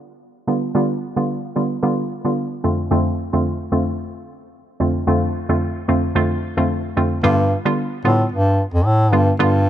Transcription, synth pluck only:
0.47 0.67 D3 medium
0.47 0.67 G3 medium
0.47 0.67 B3 medium
0.47 0.67 F4 medium
0.75 0.94 D3 medium
0.75 0.94 G3 medium
0.75 0.94 B3 medium
0.75 0.94 F4 loud
1.16 1.34 D3 medium
1.16 1.34 G3 medium
1.16 1.34 B3 medium
1.16 1.34 F4 medium
1.56 1.75 D3 medium
1.56 1.75 G3 medium
1.56 1.75 B3 medium
1.56 1.75 F4 medium
1.83 2.02 D3 medium
1.83 2.02 G3 medium
1.83 2.02 B3 medium
1.83 2.02 F4 loud
2.25 2.61 D3 medium
2.25 2.61 G3 medium
2.25 2.61 B3 medium
2.25 2.61 F4 medium
2.64 2.89 F2 medium
2.64 2.89 D3 medium
2.64 2.89 A3 medium
2.64 2.89 C4 medium
2.64 2.89 F4 medium
2.91 3.10 F2 medium
2.91 3.10 D3 medium
2.91 3.10 A3 medium
2.91 3.10 C4 medium
2.91 3.10 F4 loud
3.33 3.50 F2 medium
3.33 3.50 D3 medium
3.33 3.50 A3 medium
3.33 3.50 C4 medium
3.33 3.50 F4 medium
3.72 3.91 F2 medium
3.72 3.91 D3 medium
3.72 3.91 A3 medium
3.72 3.91 C4 medium
3.72 3.91 F4 medium
4.80 4.99 F2 medium
4.80 4.99 D3 medium
4.80 4.99 A3 medium
4.80 4.99 C4 medium
4.80 4.99 F4 medium
5.07 5.26 F2 medium
5.07 5.26 D3 medium
5.07 5.26 A3 medium
5.07 5.26 C4 medium
5.07 5.26 F4 loud
5.49 5.66 F2 medium
5.49 5.66 D3 medium
5.49 5.66 A3 medium
5.49 5.66 C4 medium
5.49 5.66 F4 medium
5.88 6.07 F2 medium
5.88 6.07 D3 medium
5.88 6.07 A3 medium
5.88 6.07 C4 medium
5.88 6.08 F4 medium
6.15 6.34 F2 medium
6.15 6.34 D3 medium
6.15 6.34 A3 medium
6.15 6.34 C4 medium
6.15 6.35 F4 loud
6.57 6.94 F2 medium
6.57 6.94 D3 medium
6.57 6.94 A3 medium
6.57 6.94 C4 medium
6.57 6.94 F4 medium
6.97 7.22 F2 medium
6.97 7.22 D3 medium
6.97 7.22 A3 medium
6.97 7.22 C4 medium
6.97 7.22 F4 medium
7.23 7.42 D3 loud
7.23 7.42 G3 medium
7.23 7.43 B3 medium
7.23 7.43 F4 loud
7.65 7.82 D3 medium
7.65 7.83 G3 medium
7.65 7.83 B3 medium
7.65 7.83 F4 medium
8.04 8.23 D3 medium
8.04 8.24 G3 medium
8.04 8.24 B3 medium
8.04 8.24 F4 medium
9.12 9.31 D3 medium
9.12 9.32 G3 medium
9.12 9.32 B3 medium
9.12 9.32 F4 medium
9.39 9.58 D3 loud
9.39 9.59 G3 medium
9.39 9.59 B3 medium
9.39 9.59 F4 loud

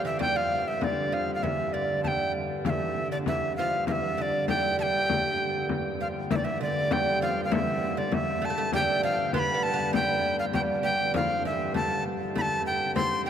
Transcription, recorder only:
0.06 0.20 E5 medium
0.21 0.38 G5 loud
0.36 0.69 F5 medium
0.68 0.85 E5 medium
0.84 1.15 D5 medium
1.13 1.34 F5 medium
1.34 1.44 F5 medium
1.43 1.75 E5 medium
1.73 2.03 D5 medium
2.04 2.32 G5 medium
2.04 2.09 A5 medium
2.66 3.08 E5 medium
2.66 2.71 F5 medium
3.12 3.18 D5 medium
3.28 3.55 E5 medium
3.57 3.85 F5 medium
3.87 3.93 F5 medium
3.92 4.17 E5 medium
4.17 4.23 E5 medium
4.22 4.48 D5 medium
4.49 4.77 G5 medium
4.80 5.66 G5 medium
4.80 4.84 A5 medium
6.01 6.08 F5 medium
6.31 6.37 E5 medium
6.37 6.46 D5 medium
6.44 6.61 E5 medium
6.62 6.94 D5 medium
6.92 7.22 G5 medium
7.22 7.44 F5 medium
7.44 7.54 F5 medium
7.52 8.00 E5 loud
7.98 8.16 D5 medium
8.14 8.47 E5 medium
8.45 8.74 A5 medium
8.74 9.02 G5 loud
9.04 9.32 F5 loud
9.34 9.40 C6 medium
9.39 9.65 B5 medium
9.63 9.94 A5 medium
9.94 10.36 G5 medium
10.39 10.45 F5 medium
10.54 10.61 G5 medium
10.84 11.12 G5 medium
11.16 11.43 F5 medium
11.46 11.73 E5 medium
11.76 12.03 A5 medium
12.38 12.65 A5 loud
12.38 12.42 B5 medium
12.66 12.94 G5 medium
12.96 13.24 C6 medium
13.26 13.30 G5 medium

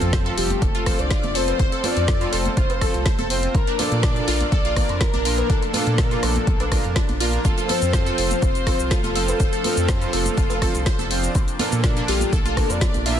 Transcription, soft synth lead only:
0.38 0.63 G4 medium
0.62 1.01 A4 loud
0.99 1.37 D5 loud
1.35 1.85 C5 loud
1.84 2.34 D5 loud
2.33 2.56 C5 loud
2.57 2.83 C5 loud
2.81 3.30 A4 medium
3.55 3.80 A#4 loud
3.79 4.51 D5 loud
4.52 5.02 D5 loud
5.01 5.51 A#4 loud
5.50 6.00 A4 loud
5.98 6.24 A#4 loud
6.23 7.20 A4 medium
7.45 7.71 A4 loud
7.69 8.42 C5 loud
8.42 8.93 C5 loud
8.91 9.39 A4 loud
9.40 9.90 A4 loud
9.89 10.15 C5 loud
10.13 11.11 A4 loud
12.08 12.31 G4 medium
12.33 12.71 A4 medium
12.70 13.05 D5 loud
13.06 13.20 E5 loud

